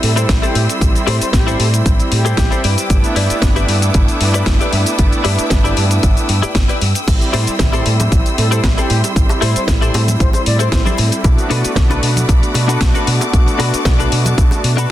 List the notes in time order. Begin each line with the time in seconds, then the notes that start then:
Already playing: A4 G5 C6 E6
0.02 A2 G3 C4 E4 A4, open hi-hat
0.16 E4 G4 A4 C5, closed hi-hat, shaker
0.29 A1, kick, snare, closed hi-hat, shaker
0.42 E4 G4 A4 C5, closed hi-hat, shaker
0.55 A2, open hi-hat
0.68 muted clean electric guitar stroke, closed hi-hat, shaker
0.81 A1 G3 C4 E4, kick, closed hi-hat, shaker
0.95 closed hi-hat, shaker
1.07 A2 E4 G4 A4 C5, open hi-hat
1.21 C5, muted fingered electric bass stroke, closed hi-hat, shaker
1.33 A1 G4, kick, snare, closed hi-hat, shaker
1.46 E4 G4 A4 C5, closed hi-hat, shaker
1.60 A2, open hi-hat
1.74 closed hi-hat, shaker
1.85 A1, muted clean electric guitar stroke, kick, closed hi-hat, shaker
2.00 muted fingered electric bass stroke, closed hi-hat, shaker
2.12 A2 G3 C4 E4 G4, open hi-hat
2.25 E4 G4 A4 C5, closed hi-hat, shaker
2.37 A1, kick, snare, closed hi-hat, shaker
2.51 E4 G4 A4 C5, closed hi-hat, shaker
2.63 G2 E4 G4 B4 D5 D6 E6, open hi-hat
2.78 closed hi-hat, shaker
2.89 G1 A3 B3 D4 E4, kick, closed hi-hat, shaker
3.04 closed hi-hat, shaker
3.15 G2 E4 G4 B4 D5, open hi-hat
3.30 muted fingered electric bass stroke, closed hi-hat, shaker
3.42 G1, kick, snare, closed hi-hat, shaker
3.56 E4 G4 B4 D5, closed hi-hat, shaker
3.68 G2, open hi-hat
3.82 closed hi-hat, shaker
3.94 G1, muted clean electric guitar stroke, kick, closed hi-hat, shaker
4.08 closed hi-hat, shaker
4.20 G2 A3 B3 D4 E4, open hi-hat
4.34 E4 G4 B4 D5, closed hi-hat, shaker
4.46 G1, kick, snare, closed hi-hat, shaker
4.60 E4 G4 B4 D5, closed hi-hat, shaker
4.73 G2, open hi-hat
4.86 muted clean electric guitar stroke, closed hi-hat, shaker
4.98 G1 A3 B3 D4 E4, kick, closed hi-hat, shaker
5.12 closed hi-hat, shaker
5.24 G2 E4 G4 B4 D5, open hi-hat
5.39 muted fingered electric bass stroke, closed hi-hat, shaker
5.50 G1, kick, snare, closed hi-hat, shaker
5.64 E4 G4 B4 D5, closed hi-hat, shaker
5.77 G2, open hi-hat
5.91 closed hi-hat, shaker
6.03 G1, muted clean electric guitar stroke, kick, closed hi-hat, shaker
6.17 closed hi-hat, shaker
6.29 G2, open hi-hat
6.42 E4 G4 B4 D5, muted fingered electric bass stroke, closed hi-hat, shaker
6.55 G1, kick, snare, closed hi-hat, shaker
6.68 E4 G4 B4 D5, closed hi-hat, shaker
6.81 G2, open hi-hat
6.94 muted clean electric guitar stroke, closed hi-hat, shaker
7.07 A1 G3 C4 E4 A4 C6, kick, closed hi-hat, crash, high bongo, shaker
7.21 closed hi-hat, shaker
7.33 A2 E4 G4 A4 C5, open hi-hat, high bongo
7.47 muted fingered electric bass stroke, closed hi-hat, shaker
7.59 A1, kick, snare, closed hi-hat, low conga, shaker
7.72 E4 G4 A4 C5, closed hi-hat, high bongo, shaker
7.86 A2, open hi-hat
8.00 closed hi-hat, high bongo, high conga, shaker
8.11 A1, muted clean electric guitar stroke, kick, closed hi-hat, shaker
8.26 closed hi-hat, shaker
8.37 A2 G3 C4 E4 A4, open hi-hat, high bongo
8.51 E4 G4 A4 C5, closed hi-hat, shaker
8.64 A1, kick, snare, closed hi-hat, high bongo, shaker
8.77 E4 G4 A4 C5, closed hi-hat, shaker
8.90 A2, open hi-hat
9.03 muted clean electric guitar stroke, closed hi-hat, high bongo, shaker
9.15 A1 G3 C4 E4, kick, closed hi-hat, shaker
9.29 closed hi-hat, high bongo, shaker
9.41 A2 E4 G4 A4 C5, open hi-hat
9.56 C5, muted fingered electric bass stroke, closed hi-hat, shaker
9.68 A1, kick, snare, closed hi-hat, high bongo, shaker
9.81 E4 G4 A4 C5, closed hi-hat, shaker
9.94 A2, open hi-hat, high bongo
10.08 closed hi-hat, high conga, shaker
10.19 A1 C5, muted clean electric guitar stroke, kick, closed hi-hat, shaker
10.33 C5, muted fingered electric bass stroke, closed hi-hat, high bongo, shaker
10.46 A2 G3 C4 E4 D5, open hi-hat
10.59 E4 G4 A4 C5, closed hi-hat, high bongo, shaker
10.72 A1 C5, kick, snare, closed hi-hat, shaker
10.85 E4 G4 A4 C5, closed hi-hat, high conga, shaker
10.98 A2, open hi-hat, high bongo
11.12 muted clean electric guitar stroke, closed hi-hat, shaker
11.24 B1 A3 B3 D4 F#4 F#5 B5 D6, kick, closed hi-hat, high bongo, shaker
11.38 closed hi-hat, shaker
11.50 B2 D4 F#4 A4 B4, open hi-hat
11.64 muted fingered electric bass stroke, closed hi-hat, high bongo, shaker
11.75 B1, kick, snare, closed hi-hat, low conga, shaker
11.90 D4 F#4 A4 B4, closed hi-hat, high bongo, shaker
12.02 B2, open hi-hat
12.16 closed hi-hat, high conga, shaker
12.28 B1, muted clean electric guitar stroke, kick, closed hi-hat, high bongo, shaker
12.43 closed hi-hat, shaker
12.54 B2 A3 B3 D4 F#4, open hi-hat, high bongo
12.68 D4 F#4 A4 B4, closed hi-hat, shaker
12.81 B1, kick, snare, closed hi-hat, shaker
12.94 D4 F#4 A4 B4, closed hi-hat, high bongo, shaker
13.07 B2, open hi-hat
13.21 muted clean electric guitar stroke, closed hi-hat, high bongo, shaker
13.33 B1 A3 B3 D4 F#4 A5, kick, closed hi-hat, shaker
13.48 closed hi-hat, shaker
13.58 B2 D4 F#4 A4 B4, open hi-hat, high bongo
13.74 muted fingered electric bass stroke, closed hi-hat, shaker
13.85 B1, kick, snare, closed hi-hat, high bongo, shaker
13.99 D4 F#4 A4 B4, closed hi-hat, shaker
14.12 B2, open hi-hat
14.25 closed hi-hat, high bongo, high conga, shaker
14.37 B1, muted clean electric guitar stroke, kick, closed hi-hat, shaker
14.51 muted fingered electric bass stroke, closed hi-hat, high bongo, shaker
14.64 B2, open hi-hat
14.77 D4 F#4 A4 B4, closed hi-hat, shaker